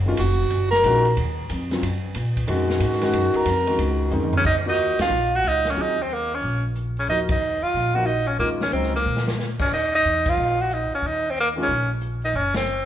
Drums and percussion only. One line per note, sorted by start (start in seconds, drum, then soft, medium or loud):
0.17 hi-hat pedal soft
0.17 ride medium
0.51 ride medium
0.72 snare medium
0.84 hi-hat pedal medium
0.84 ride medium
1.05 ride soft
1.17 ride medium
1.50 hi-hat pedal medium
1.50 ride medium
1.71 snare soft
1.71 ride soft
1.83 ride medium
2.15 hi-hat pedal medium
2.15 ride medium
2.37 kick soft
2.37 ride medium
2.48 ride medium
2.69 snare medium
2.80 hi-hat pedal medium
2.80 ride medium
2.92 snare soft
3.02 snare soft
3.02 ride medium
3.13 ride medium
3.34 ride medium
3.46 hi-hat pedal medium
3.46 ride medium
3.67 ride soft
3.79 ride medium
4.11 hi-hat pedal medium
4.23 floor tom medium
4.33 floor tom medium
4.44 kick medium
4.44 crash medium
4.77 closed hi-hat soft
4.99 snare medium
4.99 ride medium
5.43 closed hi-hat soft
5.65 snare soft
5.76 open hi-hat soft
6.09 closed hi-hat medium
6.43 open hi-hat soft
6.76 closed hi-hat medium
6.97 open hi-hat soft
7.08 open hi-hat soft
7.29 kick medium
7.29 ride medium
7.62 open hi-hat soft
7.74 open hi-hat soft
8.07 closed hi-hat soft
8.28 open hi-hat soft
8.40 open hi-hat soft
8.61 snare medium
8.72 closed hi-hat soft
8.83 snare soft
8.94 snare soft
9.17 snare medium
9.28 snare medium
9.39 snare medium
9.59 kick medium
9.59 crash medium
10.04 closed hi-hat soft
10.26 kick medium
10.26 ride medium
10.71 closed hi-hat medium
10.92 open hi-hat soft
11.04 open hi-hat soft
11.37 closed hi-hat medium
11.69 open hi-hat soft
12.01 closed hi-hat soft
12.22 open hi-hat soft
12.34 open hi-hat soft
12.54 snare medium
12.54 ride medium